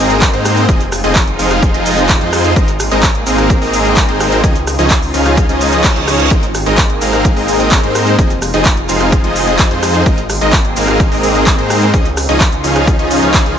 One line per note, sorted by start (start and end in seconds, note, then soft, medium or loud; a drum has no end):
0.00 0.31 G#1 loud
0.00 0.31 G#3 medium
0.00 0.67 A#3 medium
0.00 0.31 C4 medium
0.00 0.67 C4 medium
0.00 0.31 D#4 medium
0.00 0.67 G#4 medium
0.00 0.31 A#4 medium
0.00 0.31 D#5 loud
0.10 closed hi-hat soft
0.10 shaker soft
0.22 kick loud
0.22 clap loud
0.22 closed hi-hat medium
0.22 shaker soft
0.34 0.66 G#2 loud
0.34 0.66 G#3 loud
0.34 0.66 C4 medium
0.34 0.66 D#4 medium
0.34 0.66 A#4 medium
0.34 0.66 C5 loud
0.34 closed hi-hat soft
0.45 cross-stick medium
0.45 open hi-hat loud
0.45 shaker medium
0.57 closed hi-hat soft
0.57 shaker soft
0.69 1.02 F1 loud
0.69 0.82 F3 medium
0.69 2.54 G#3 medium
0.69 0.82 C4 medium
0.69 0.82 D#4 medium
0.69 2.54 D#4 medium
0.69 2.54 F4 medium
0.69 0.82 G#4 medium
0.69 0.82 D#5 medium
0.69 kick loud
0.69 closed hi-hat medium
0.69 shaker soft
0.81 closed hi-hat soft
0.81 shaker soft
0.92 cross-stick medium
0.92 open hi-hat loud
0.92 shaker medium
1.04 1.37 F1 medium
1.04 1.17 F3 medium
1.04 1.17 C4 medium
1.04 1.17 D#4 medium
1.04 1.17 G#4 medium
1.04 1.17 D#5 loud
1.04 closed hi-hat soft
1.04 shaker soft
1.15 kick loud
1.15 clap loud
1.15 closed hi-hat medium
1.15 shaker soft
1.27 closed hi-hat soft
1.39 1.72 F1 loud
1.39 1.71 F3 medium
1.39 1.71 C4 medium
1.39 1.71 D#4 medium
1.39 1.71 G#4 medium
1.39 1.71 F5 medium
1.39 open hi-hat loud
1.39 shaker medium
1.51 cross-stick medium
1.51 closed hi-hat soft
1.51 shaker soft
1.63 kick loud
1.63 closed hi-hat medium
1.63 shaker soft
1.74 2.19 F1 loud
1.74 2.18 F3 medium
1.74 2.18 C4 medium
1.74 2.18 D#4 medium
1.74 2.18 G#4 medium
1.74 2.18 D#5 loud
1.74 closed hi-hat soft
1.86 open hi-hat loud
1.86 shaker medium
1.98 closed hi-hat soft
1.98 shaker soft
2.09 kick loud
2.09 clap loud
2.09 closed hi-hat medium
2.09 shaker soft
2.21 2.54 F2 loud
2.21 2.53 F3 loud
2.21 2.53 C4 medium
2.21 2.53 D#4 medium
2.21 2.53 G#4 medium
2.21 2.53 C5 loud
2.21 closed hi-hat soft
2.33 cross-stick medium
2.33 open hi-hat loud
2.33 shaker medium
2.45 closed hi-hat soft
2.45 shaker soft
2.56 2.89 G#1 loud
2.56 2.70 G#3 medium
2.56 4.42 A#3 medium
2.56 2.70 C4 medium
2.56 4.42 C4 medium
2.56 2.70 D#4 medium
2.56 4.42 G#4 medium
2.56 2.70 A#4 medium
2.56 2.70 D#5 medium
2.56 kick loud
2.56 closed hi-hat medium
2.56 shaker soft
2.68 closed hi-hat soft
2.68 shaker soft
2.80 cross-stick medium
2.80 open hi-hat loud
2.80 shaker medium
2.91 3.24 G#1 medium
2.91 3.05 G#3 loud
2.91 3.05 C4 medium
2.91 3.05 D#4 medium
2.91 3.05 A#4 medium
2.91 3.05 D#5 loud
2.91 closed hi-hat soft
2.91 shaker soft
3.03 kick loud
3.03 clap loud
3.03 closed hi-hat medium
3.03 shaker soft
3.15 closed hi-hat soft
3.26 3.59 G#1 loud
3.26 3.59 G#3 medium
3.26 3.59 C4 medium
3.26 3.59 D#4 medium
3.26 3.59 A#4 medium
3.26 3.59 F5 medium
3.26 open hi-hat loud
3.26 shaker medium
3.38 cross-stick medium
3.38 closed hi-hat soft
3.38 shaker soft
3.50 kick loud
3.50 closed hi-hat medium
3.50 shaker soft
3.62 4.06 G#1 loud
3.62 4.06 G#3 medium
3.62 4.06 C4 medium
3.62 4.06 D#4 medium
3.62 4.06 A#4 medium
3.62 4.06 D#5 loud
3.62 open hi-hat medium
3.73 open hi-hat loud
3.73 shaker medium
3.85 closed hi-hat soft
3.85 shaker soft
3.97 kick loud
3.97 clap loud
3.97 closed hi-hat medium
3.97 shaker soft
4.08 4.41 G#1 loud
4.08 4.41 G#3 medium
4.08 4.41 C4 medium
4.08 4.41 D#4 medium
4.08 4.41 A#4 medium
4.08 4.41 C5 loud
4.08 closed hi-hat soft
4.20 cross-stick medium
4.20 open hi-hat loud
4.20 shaker medium
4.32 closed hi-hat soft
4.32 shaker soft
4.44 4.76 C#2 loud
4.44 4.57 F3 medium
4.44 4.57 C#4 medium
4.44 6.29 C#4 medium
4.44 6.29 D#4 medium
4.44 6.29 F4 medium
4.44 kick loud
4.44 closed hi-hat medium
4.44 shaker soft
4.55 closed hi-hat soft
4.55 shaker soft
4.67 cross-stick medium
4.67 open hi-hat loud
4.67 shaker medium
4.79 5.12 C#2 medium
4.79 4.92 F3 medium
4.79 4.92 C#4 medium
4.79 4.92 D#4 medium
4.79 4.92 G#4 medium
4.79 4.92 D#5 loud
4.79 closed hi-hat soft
4.79 shaker soft
4.90 kick loud
4.90 clap loud
4.90 closed hi-hat medium
4.90 shaker soft
5.02 open hi-hat medium
5.02 shaker soft
5.14 5.47 C#2 loud
5.14 5.46 F3 medium
5.14 5.46 C#4 medium
5.14 5.46 D#4 medium
5.14 5.46 G#4 medium
5.14 5.46 F5 medium
5.14 open hi-hat loud
5.14 shaker medium
5.26 cross-stick medium
5.26 closed hi-hat soft
5.26 shaker soft
5.37 kick loud
5.37 closed hi-hat medium
5.37 reverse cymbal medium
5.37 shaker soft
5.49 5.94 C#2 loud
5.49 5.93 F3 medium
5.49 5.93 C#4 medium
5.49 5.93 D#4 medium
5.49 5.93 G#4 medium
5.49 5.93 D#5 loud
5.49 closed hi-hat soft
5.49 shaker soft
5.61 open hi-hat loud
5.61 shaker medium
5.73 closed hi-hat soft
5.73 shaker soft
5.84 kick loud
5.84 clap loud
5.84 closed hi-hat medium
5.84 shaker soft
5.96 6.29 C#2 medium
5.96 6.28 F3 medium
5.96 6.28 C#4 medium
5.96 6.28 D#4 medium
5.96 6.28 G#4 medium
5.96 6.28 C#5 loud
5.96 closed hi-hat soft
6.08 cross-stick medium
6.08 open hi-hat loud
6.08 shaker medium
6.19 closed hi-hat soft
6.19 shaker soft
6.31 6.64 G#1 loud
6.31 6.45 G#3 medium
6.31 8.17 A#3 medium
6.31 8.17 C4 medium
6.31 6.45 C4 medium
6.31 6.45 D#4 medium
6.31 8.17 G#4 medium
6.31 6.45 A#4 medium
6.31 kick loud
6.31 closed hi-hat medium
6.31 shaker soft
6.43 closed hi-hat soft
6.43 shaker soft
6.55 cross-stick medium
6.55 open hi-hat loud
6.55 shaker medium
6.66 6.99 G#1 medium
6.66 6.80 G#3 medium
6.66 6.80 C4 medium
6.66 6.80 D#4 medium
6.66 6.80 A#4 medium
6.66 6.80 D#5 loud
6.66 closed hi-hat soft
6.66 shaker soft
6.78 kick loud
6.78 clap loud
6.78 closed hi-hat medium
6.78 shaker soft
6.90 closed hi-hat soft
7.01 7.34 G#1 loud
7.01 7.34 G#3 medium
7.01 7.34 C4 medium
7.01 7.34 D#4 medium
7.01 7.34 A#4 medium
7.01 7.34 F5 medium
7.01 open hi-hat loud
7.01 shaker medium
7.13 cross-stick medium
7.13 closed hi-hat soft
7.13 shaker soft
7.25 kick loud
7.25 closed hi-hat medium
7.25 shaker soft
7.37 7.81 G#1 loud
7.37 7.81 G#3 medium
7.37 7.81 C4 medium
7.37 7.81 D#4 medium
7.37 7.81 A#4 medium
7.37 7.81 D#5 loud
7.37 open hi-hat medium
7.48 open hi-hat loud
7.48 shaker medium
7.60 closed hi-hat soft
7.60 shaker soft
7.72 kick loud
7.72 clap loud
7.72 closed hi-hat medium
7.72 shaker soft
7.83 8.16 G#2 loud
7.83 8.16 G#3 loud
7.83 8.16 C4 medium
7.83 8.16 D#4 medium
7.83 8.16 A#4 medium
7.83 8.16 C5 loud
7.83 closed hi-hat soft
7.95 cross-stick medium
7.95 open hi-hat loud
7.95 shaker medium
8.07 closed hi-hat soft
8.07 shaker soft
8.19 8.51 F1 loud
8.19 10.04 G#3 medium
8.19 10.04 D#4 medium
8.19 10.04 F4 medium
8.19 8.32 G#4 medium
8.19 kick loud
8.19 closed hi-hat medium
8.19 shaker soft
8.30 closed hi-hat soft
8.30 shaker soft
8.42 cross-stick medium
8.42 open hi-hat loud
8.42 shaker medium
8.54 8.87 F1 medium
8.54 8.67 F3 medium
8.54 8.67 C4 medium
8.54 8.67 D#4 medium
8.54 8.67 G#4 medium
8.54 8.67 D#5 loud
8.54 closed hi-hat soft
8.54 shaker soft
8.65 kick loud
8.65 clap loud
8.65 closed hi-hat medium
8.65 shaker soft
8.77 closed hi-hat soft
8.89 9.22 F1 loud
8.89 9.21 F3 medium
8.89 9.21 C4 medium
8.89 9.21 D#4 medium
8.89 9.21 G#4 medium
8.89 9.21 F5 medium
8.89 open hi-hat loud
8.89 shaker medium
9.01 cross-stick medium
9.01 closed hi-hat soft
9.01 shaker soft
9.12 kick loud
9.12 closed hi-hat medium
9.12 shaker soft
9.24 9.69 F1 loud
9.24 9.68 F3 medium
9.24 9.68 C4 medium
9.24 9.68 D#4 medium
9.24 9.68 G#4 medium
9.24 9.68 D#5 loud
9.24 closed hi-hat soft
9.36 open hi-hat loud
9.36 shaker medium
9.47 closed hi-hat soft
9.47 shaker soft
9.59 kick loud
9.59 clap loud
9.59 closed hi-hat medium
9.59 shaker soft
9.71 10.04 F2 loud
9.71 10.03 F3 loud
9.71 10.03 C4 medium
9.71 10.03 D#4 medium
9.71 10.03 G#4 medium
9.71 10.03 C5 loud
9.71 closed hi-hat soft
9.83 cross-stick medium
9.83 open hi-hat loud
9.83 shaker medium
9.94 closed hi-hat soft
9.94 shaker soft
10.06 10.39 G#1 loud
10.06 11.92 A#3 medium
10.06 11.92 C4 medium
10.06 11.92 G#4 medium
10.06 kick loud
10.06 closed hi-hat medium
10.06 shaker soft
10.18 closed hi-hat soft
10.18 shaker soft
10.30 cross-stick medium
10.30 open hi-hat loud
10.30 shaker medium
10.41 10.74 G#1 medium
10.41 10.55 G#3 medium
10.41 10.55 C4 medium
10.41 10.55 D#4 medium
10.41 10.55 A#4 medium
10.41 10.55 D#5 loud
10.41 closed hi-hat soft
10.41 shaker soft
10.53 kick loud
10.53 clap loud
10.53 closed hi-hat medium
10.53 shaker soft
10.65 closed hi-hat soft
10.76 11.09 G#1 loud
10.76 11.09 G#3 medium
10.76 11.09 C4 medium
10.76 11.09 D#4 medium
10.76 11.09 A#4 medium
10.76 11.09 F5 medium
10.76 open hi-hat loud
10.76 shaker medium
10.88 cross-stick medium
10.88 closed hi-hat soft
10.88 shaker soft
11.00 kick loud
11.00 closed hi-hat medium
11.00 shaker soft
11.12 11.56 G#1 loud
11.12 11.56 G#3 loud
11.12 11.56 C4 medium
11.12 11.56 D#4 medium
11.12 11.56 A#4 medium
11.12 11.56 D#5 loud
11.12 open hi-hat medium
11.23 open hi-hat loud
11.23 shaker medium
11.35 closed hi-hat soft
11.35 shaker soft
11.47 kick loud
11.47 clap loud
11.47 closed hi-hat medium
11.47 shaker soft
11.58 11.91 G#2 loud
11.58 11.91 G#3 loud
11.58 11.91 C4 medium
11.58 11.91 D#4 medium
11.58 11.91 A#4 medium
11.58 11.91 C5 loud
11.58 closed hi-hat soft
11.70 cross-stick medium
11.70 open hi-hat loud
11.70 shaker medium
11.82 closed hi-hat soft
11.82 shaker soft
11.94 12.27 C#2 medium
11.94 12.07 F3 medium
11.94 12.07 C#4 medium
11.94 13.59 C#4 medium
11.94 12.07 D#4 medium
11.94 13.59 D#4 medium
11.94 13.59 F4 medium
11.94 12.07 G#4 medium
11.94 12.07 D#5 medium
11.94 kick loud
11.94 closed hi-hat medium
11.94 shaker soft
12.05 closed hi-hat soft
12.05 shaker soft
12.17 cross-stick medium
12.17 open hi-hat loud
12.17 shaker medium
12.29 12.62 C#2 medium
12.29 12.42 F3 medium
12.29 12.42 C#4 medium
12.29 12.42 D#4 medium
12.29 12.42 G#4 medium
12.29 12.42 D#5 loud
12.29 closed hi-hat soft
12.29 shaker soft
12.41 kick loud
12.41 clap loud
12.41 closed hi-hat medium
12.41 shaker soft
12.52 closed hi-hat soft
12.52 shaker soft
12.64 12.97 C#2 loud
12.64 12.96 F3 medium
12.64 12.96 C#4 medium
12.64 12.96 D#4 medium
12.64 12.96 G#4 medium
12.64 12.96 F5 medium
12.64 open hi-hat loud
12.64 shaker medium
12.76 cross-stick medium
12.76 closed hi-hat soft
12.76 shaker soft
12.87 kick loud
12.87 closed hi-hat medium
12.87 shaker soft
12.99 13.20 C#2 loud
12.99 13.20 F3 medium
12.99 13.20 C#4 medium
12.99 13.20 D#4 medium
12.99 13.20 G#4 medium
12.99 13.20 D#5 loud
12.99 closed hi-hat soft
13.11 open hi-hat loud
13.11 shaker medium
13.22 13.44 C#2 medium
13.22 13.43 F3 loud
13.22 13.43 C#4 medium
13.22 13.43 D#4 medium
13.22 13.43 G#4 medium
13.22 13.43 F5 loud
13.22 closed hi-hat soft
13.22 shaker soft
13.34 kick loud
13.34 clap loud
13.34 closed hi-hat medium
13.34 shaker soft
13.46 13.55 C#2 loud
13.46 13.55 F3 medium
13.46 13.55 C#4 medium
13.46 13.55 D#4 medium
13.46 13.55 G#4 medium
13.46 13.55 F5 medium
13.46 closed hi-hat soft